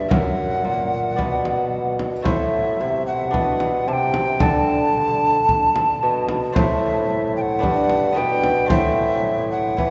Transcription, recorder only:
0, 0, Header, 1, 2, 480
1, 0, Start_track
1, 0, Tempo, 537634
1, 99, Time_signature, 4, 2, 24, 8
1, 8841, End_track
2, 0, Start_track
2, 0, Title_t, "Recorder"
2, 0, Program_c, 0, 74
2, 96, Note_on_c, 0, 78, 89
2, 1746, Note_off_c, 0, 78, 0
2, 2025, Note_on_c, 0, 76, 78
2, 2709, Note_off_c, 0, 76, 0
2, 2740, Note_on_c, 0, 78, 83
2, 3464, Note_on_c, 0, 81, 87
2, 3478, Note_off_c, 0, 78, 0
2, 3508, Note_on_c, 0, 79, 94
2, 3517, Note_off_c, 0, 81, 0
2, 3953, Note_on_c, 0, 81, 95
2, 3966, Note_off_c, 0, 79, 0
2, 5627, Note_off_c, 0, 81, 0
2, 5859, Note_on_c, 0, 76, 93
2, 6543, Note_off_c, 0, 76, 0
2, 6576, Note_on_c, 0, 79, 91
2, 6620, Note_on_c, 0, 78, 99
2, 6629, Note_off_c, 0, 79, 0
2, 7298, Note_on_c, 0, 79, 101
2, 7312, Note_off_c, 0, 78, 0
2, 7765, Note_off_c, 0, 79, 0
2, 7771, Note_on_c, 0, 76, 97
2, 8480, Note_off_c, 0, 76, 0
2, 8497, Note_on_c, 0, 78, 101
2, 8841, Note_off_c, 0, 78, 0
2, 8841, End_track
0, 0, End_of_file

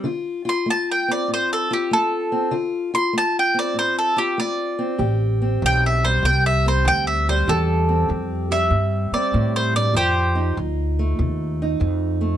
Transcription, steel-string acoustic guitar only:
0, 0, Header, 1, 2, 480
1, 0, Start_track
1, 0, Key_signature, 0, "minor"
1, 0, Tempo, 618557
1, 44, Time_signature, 4, 2, 24, 8
1, 9600, End_track
2, 0, Start_track
2, 0, Title_t, "Steel-string acoustic guitar"
2, 0, Program_c, 0, 25
2, 28, Note_on_c, 0, 50, 78
2, 37, Note_on_c, 0, 65, 68
2, 346, Note_off_c, 0, 65, 0
2, 349, Note_on_c, 0, 65, 65
2, 484, Note_off_c, 0, 50, 0
2, 512, Note_on_c, 0, 57, 65
2, 841, Note_on_c, 0, 60, 55
2, 965, Note_off_c, 0, 57, 0
2, 995, Note_on_c, 0, 45, 65
2, 1315, Note_off_c, 0, 65, 0
2, 1324, Note_on_c, 0, 65, 70
2, 1447, Note_off_c, 0, 45, 0
2, 1483, Note_on_c, 0, 57, 62
2, 1797, Note_off_c, 0, 60, 0
2, 1800, Note_on_c, 0, 60, 57
2, 1931, Note_off_c, 0, 57, 0
2, 1940, Note_off_c, 0, 65, 0
2, 1949, Note_on_c, 0, 50, 75
2, 1951, Note_on_c, 0, 65, 71
2, 1973, Note_off_c, 0, 60, 0
2, 2269, Note_off_c, 0, 65, 0
2, 2279, Note_on_c, 0, 65, 68
2, 2404, Note_off_c, 0, 50, 0
2, 2430, Note_on_c, 0, 57, 67
2, 2750, Note_on_c, 0, 60, 59
2, 2884, Note_off_c, 0, 57, 0
2, 2902, Note_on_c, 0, 45, 67
2, 3223, Note_off_c, 0, 65, 0
2, 3232, Note_on_c, 0, 65, 73
2, 3361, Note_off_c, 0, 45, 0
2, 3397, Note_on_c, 0, 57, 63
2, 3711, Note_off_c, 0, 60, 0
2, 3714, Note_on_c, 0, 60, 58
2, 3848, Note_off_c, 0, 57, 0
2, 3860, Note_off_c, 0, 65, 0
2, 3867, Note_on_c, 0, 45, 78
2, 3871, Note_on_c, 0, 67, 70
2, 4200, Note_off_c, 0, 60, 0
2, 4203, Note_on_c, 0, 60, 59
2, 4323, Note_off_c, 0, 45, 0
2, 4365, Note_on_c, 0, 52, 65
2, 4688, Note_on_c, 0, 55, 63
2, 4812, Note_off_c, 0, 52, 0
2, 4850, Note_on_c, 0, 40, 68
2, 5165, Note_off_c, 0, 60, 0
2, 5168, Note_on_c, 0, 60, 62
2, 5294, Note_off_c, 0, 40, 0
2, 5322, Note_on_c, 0, 52, 68
2, 5645, Note_off_c, 0, 55, 0
2, 5656, Note_on_c, 0, 55, 62
2, 5771, Note_off_c, 0, 52, 0
2, 5778, Note_off_c, 0, 67, 0
2, 5801, Note_on_c, 0, 45, 77
2, 5811, Note_on_c, 0, 67, 73
2, 6118, Note_off_c, 0, 60, 0
2, 6121, Note_on_c, 0, 60, 57
2, 6250, Note_off_c, 0, 45, 0
2, 6274, Note_on_c, 0, 52, 63
2, 6595, Note_off_c, 0, 55, 0
2, 6604, Note_on_c, 0, 55, 62
2, 6727, Note_off_c, 0, 52, 0
2, 6753, Note_on_c, 0, 40, 69
2, 7079, Note_off_c, 0, 60, 0
2, 7088, Note_on_c, 0, 60, 63
2, 7206, Note_off_c, 0, 40, 0
2, 7241, Note_on_c, 0, 45, 65
2, 7553, Note_on_c, 0, 43, 63
2, 7559, Note_off_c, 0, 45, 0
2, 7707, Note_off_c, 0, 43, 0
2, 7708, Note_off_c, 0, 60, 0
2, 7708, Note_off_c, 0, 67, 0
2, 7710, Note_on_c, 0, 41, 76
2, 7714, Note_on_c, 0, 65, 71
2, 7725, Note_off_c, 0, 55, 0
2, 8034, Note_on_c, 0, 63, 59
2, 8164, Note_off_c, 0, 41, 0
2, 8203, Note_on_c, 0, 53, 62
2, 8529, Note_on_c, 0, 57, 60
2, 8650, Note_off_c, 0, 53, 0
2, 8685, Note_on_c, 0, 48, 65
2, 8996, Note_off_c, 0, 63, 0
2, 9017, Note_on_c, 0, 63, 65
2, 9131, Note_off_c, 0, 48, 0
2, 9156, Note_on_c, 0, 53, 67
2, 9465, Note_off_c, 0, 57, 0
2, 9475, Note_on_c, 0, 57, 56
2, 9600, Note_off_c, 0, 53, 0
2, 9600, Note_off_c, 0, 57, 0
2, 9600, Note_off_c, 0, 63, 0
2, 9600, Note_off_c, 0, 65, 0
2, 9600, End_track
0, 0, End_of_file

